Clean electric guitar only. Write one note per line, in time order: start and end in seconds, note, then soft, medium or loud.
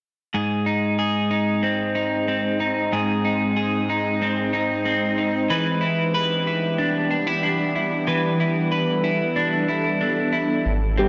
0.34 2.91 G#2 medium
0.34 0.97 G#4 medium
0.66 1.30 D#4 soft
0.99 2.92 G#4 medium
1.31 1.94 D#4 soft
1.63 2.27 C4 soft
1.95 2.59 D#4 soft
2.28 4.21 C4 soft
2.60 3.24 D#4 soft
2.92 5.50 G#2 medium
2.92 3.55 G#4 medium
3.25 3.88 D#4 soft
3.57 5.50 G#4 medium
3.90 4.52 D#4 medium
4.22 4.84 C4 medium
4.53 5.17 D#4 soft
4.85 5.56 C4 soft
5.18 5.56 D#4 soft
5.50 8.06 E3 medium
5.50 6.13 B4 medium
5.81 6.46 E4 medium
6.14 8.07 B4 medium
6.47 7.10 E4 medium
6.78 7.09 D4 medium
7.11 7.27 D4 medium
7.27 7.74 E4 soft
7.43 9.35 D4 soft
7.75 8.39 E4 soft
8.07 10.66 E3 medium
8.07 8.70 B4 medium
8.40 9.03 E4 soft
8.72 10.72 B4 medium
9.04 9.67 E4 medium
9.36 10.00 D4 medium
9.68 10.31 E4 medium
10.01 10.72 D4 soft
10.33 10.72 E4 soft
10.98 11.08 C4 medium